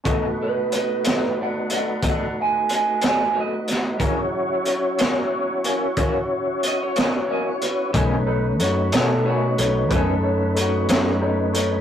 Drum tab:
HH |x-xx-xx-xx-x|x-xx-xx-xx-x|x-xx-xx-xx-x|
SD |---o-----o-o|---o-----o--|---o-----o--|
BD |o-----o-----|o-----o-----|o-----o-----|